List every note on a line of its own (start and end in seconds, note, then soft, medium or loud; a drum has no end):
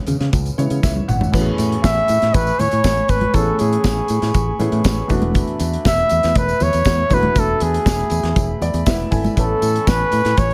0.00 0.55 C#3 medium
0.00 0.55 E3 medium
0.00 0.56 G#3 medium
0.00 0.56 B3 medium
0.00 0.56 C#4 medium
0.07 0.16 C#3 medium
0.07 closed hi-hat medium
0.07 tambourine medium
0.07 low conga medium
0.20 0.28 C#3 loud
0.20 snare soft
0.20 closed hi-hat soft
0.33 0.49 C#2 loud
0.33 kick loud
0.33 closed hi-hat medium
0.33 tambourine medium
0.33 muted conga medium
0.46 closed hi-hat soft
0.46 tambourine soft
0.58 1.33 C#3 medium
0.58 0.66 C#3 medium
0.58 1.31 E3 medium
0.58 1.34 G#3 medium
0.58 1.32 B3 soft
0.58 1.34 E4 medium
0.58 0.82 C#5 medium
0.58 closed hi-hat medium
0.58 tambourine soft
0.58 muted conga soft
0.70 0.79 C#3 medium
0.70 closed hi-hat soft
0.70 tambourine soft
0.83 0.99 C#2 medium
0.83 1.07 E5 medium
0.83 kick loud
0.83 snare soft
0.83 tambourine medium
0.83 high conga medium
0.96 high tom medium
1.08 1.24 G#1 medium
1.08 1.32 F#5 medium
1.08 mid tom medium
1.08 tambourine soft
1.21 floor tom medium
1.21 tambourine soft
1.21 high conga medium
1.32 1.50 A1 loud
1.32 3.30 E3 medium
1.32 3.30 A3 medium
1.32 10.54 A3 medium
1.32 3.30 B3 medium
1.32 3.31 C#4 medium
1.32 1.41 F#4 medium
1.32 5.07 G#5 medium
1.32 10.54 B5 medium
1.32 5.07 C#6 medium
1.32 kick medium
1.32 crash medium
1.32 tambourine medium
1.32 muted conga medium
1.41 3.34 G#4 medium
1.58 1.75 A2 medium
1.58 closed hi-hat medium
1.58 tambourine medium
1.72 closed hi-hat medium
1.84 2.00 A1 loud
1.84 2.36 E5 loud
1.84 kick loud
1.84 snare loud
1.84 tambourine loud
1.84 high conga medium
1.98 closed hi-hat soft
2.08 2.17 A2 loud
2.08 closed hi-hat medium
2.08 tambourine medium
2.22 2.30 A2 medium
2.22 snare soft
2.22 closed hi-hat soft
2.34 2.50 A1 loud
2.34 2.61 B4 loud
2.34 kick loud
2.34 closed hi-hat medium
2.34 tambourine medium
2.34 muted conga medium
2.47 tambourine soft
2.59 2.67 A2 medium
2.59 3.11 C#5 loud
2.59 closed hi-hat medium
2.59 tambourine soft
2.59 muted conga soft
2.59 low conga medium
2.71 2.80 A2 medium
2.71 closed hi-hat medium
2.71 tambourine soft
2.84 3.00 A1 loud
2.84 kick loud
2.84 snare loud
2.84 tambourine medium
2.84 high conga medium
2.97 closed hi-hat soft
3.08 3.25 G#1 medium
3.08 3.37 B4 medium
3.08 kick loud
3.08 open hi-hat soft
3.08 tambourine medium
3.21 closed hi-hat soft
3.21 high conga medium
3.34 3.50 A1 loud
3.34 4.57 E3 medium
3.34 4.57 A3 medium
3.34 4.58 B3 medium
3.34 4.58 C#4 medium
3.34 4.58 G#4 medium
3.34 3.61 A4 medium
3.34 kick loud
3.34 closed hi-hat medium
3.34 tambourine medium
3.34 muted conga medium
3.59 3.76 A2 loud
3.59 4.60 G#4 medium
3.59 closed hi-hat medium
3.59 tambourine medium
3.73 closed hi-hat medium
3.84 4.00 A1 loud
3.84 kick loud
3.84 snare loud
3.84 tambourine loud
3.84 high conga medium
4.08 4.18 A2 medium
4.08 closed hi-hat medium
4.08 tambourine medium
4.22 4.30 A2 loud
4.22 snare soft
4.22 closed hi-hat medium
4.22 tambourine soft
4.34 4.51 A1 loud
4.34 kick loud
4.34 closed hi-hat medium
4.34 tambourine medium
4.34 muted conga medium
4.59 4.67 A2 medium
4.59 5.07 E3 medium
4.59 5.08 A3 medium
4.59 5.08 B3 medium
4.59 5.11 C#4 medium
4.59 5.11 G#4 medium
4.59 closed hi-hat medium
4.59 tambourine soft
4.59 muted conga soft
4.72 4.80 A2 medium
4.72 closed hi-hat soft
4.84 5.01 A1 medium
4.84 kick loud
4.84 snare loud
4.84 tambourine loud
4.84 high conga medium
5.08 5.42 E1 loud
5.08 7.06 E3 medium
5.08 7.06 A3 medium
5.08 7.07 B3 medium
5.08 7.07 D4 medium
5.08 7.07 F#4 medium
5.08 9.32 E5 medium
5.08 kick medium
5.08 open hi-hat soft
5.08 tambourine medium
5.22 closed hi-hat soft
5.22 high conga loud
5.35 kick loud
5.35 closed hi-hat medium
5.35 tambourine medium
5.35 muted conga medium
5.47 closed hi-hat soft
5.60 5.76 E2 medium
5.60 closed hi-hat medium
5.60 tambourine medium
5.73 closed hi-hat soft
5.85 6.01 E1 loud
5.85 6.39 E5 loud
5.85 kick loud
5.85 snare loud
5.85 tambourine loud
5.85 high conga medium
5.99 closed hi-hat soft
6.09 6.19 E2 medium
6.09 closed hi-hat medium
6.09 tambourine medium
6.23 6.32 E2 loud
6.23 snare soft
6.23 closed hi-hat medium
6.23 tambourine soft
6.35 6.52 E1 loud
6.35 6.64 B4 loud
6.35 kick loud
6.35 closed hi-hat medium
6.35 tambourine medium
6.35 muted conga medium
6.48 closed hi-hat soft
6.48 tambourine soft
6.60 6.69 E2 loud
6.60 7.15 C#5 loud
6.60 closed hi-hat medium
6.60 tambourine soft
6.60 muted conga medium
6.60 low conga medium
6.73 6.82 E2 medium
6.73 closed hi-hat medium
6.73 tambourine soft
6.85 7.02 E2 loud
6.85 kick loud
6.85 snare loud
6.85 tambourine medium
6.85 high conga medium
7.10 7.27 D#1 loud
7.10 9.07 E3 medium
7.10 9.08 A3 medium
7.10 8.83 B3 medium
7.10 8.84 D4 medium
7.10 8.84 F#4 medium
7.10 7.41 B4 loud
7.10 kick medium
7.10 open hi-hat soft
7.10 tambourine soft
7.23 closed hi-hat soft
7.23 high conga medium
7.35 7.52 E1 loud
7.35 7.64 A4 medium
7.35 kick loud
7.35 closed hi-hat medium
7.35 tambourine medium
7.35 muted conga soft
7.60 7.77 E2 loud
7.60 8.62 G#4 medium
7.60 closed hi-hat medium
7.60 tambourine medium
7.60 muted conga soft
7.74 closed hi-hat soft
7.86 8.02 E1 loud
7.86 kick loud
7.86 snare loud
7.86 tambourine loud
7.86 high conga medium
8.00 closed hi-hat soft
8.10 8.19 E2 loud
8.10 closed hi-hat medium
8.10 tambourine medium
8.23 8.31 E2 loud
8.23 snare soft
8.23 closed hi-hat soft
8.36 8.52 E1 loud
8.36 kick loud
8.36 closed hi-hat medium
8.36 tambourine medium
8.36 muted conga medium
8.61 8.69 E2 medium
8.61 8.85 D5 medium
8.61 closed hi-hat medium
8.61 tambourine medium
8.61 muted conga soft
8.74 8.82 E2 medium
8.74 closed hi-hat medium
8.74 tambourine soft
8.86 9.02 E1 medium
8.86 9.10 B3 medium
8.86 9.10 E4 medium
8.86 9.10 E5 medium
8.86 kick loud
8.86 snare loud
8.86 tambourine medium
8.86 high conga medium
9.00 closed hi-hat soft
9.11 9.28 G#1 loud
9.11 9.59 E4 medium
9.11 9.37 A4 medium
9.11 9.35 G#5 medium
9.11 kick medium
9.11 open hi-hat medium
9.11 tambourine medium
9.24 closed hi-hat soft
9.24 tambourine soft
9.24 high conga medium
9.36 9.53 A1 loud
9.36 10.54 E3 medium
9.36 10.54 A3 medium
9.36 10.54 B3 medium
9.36 10.54 C#4 medium
9.36 10.54 A4 medium
9.36 10.54 G#5 medium
9.36 10.54 C#6 medium
9.36 kick loud
9.36 closed hi-hat medium
9.36 tambourine medium
9.36 muted conga medium
9.40 9.90 A4 medium
9.62 9.78 A2 medium
9.62 closed hi-hat medium
9.62 tambourine medium
9.76 closed hi-hat medium
9.87 10.03 A1 loud
9.87 10.40 B4 loud
9.87 kick loud
9.87 snare loud
9.87 tambourine loud
9.87 high conga medium
10.12 10.20 A2 medium
10.12 closed hi-hat medium
10.12 tambourine medium
10.25 10.33 A2 loud
10.25 snare soft
10.25 closed hi-hat soft
10.25 tambourine soft
10.37 10.53 A1 loud
10.37 10.54 C#5 loud
10.37 kick loud
10.37 closed hi-hat medium
10.37 tambourine medium
10.37 muted conga medium
10.51 closed hi-hat soft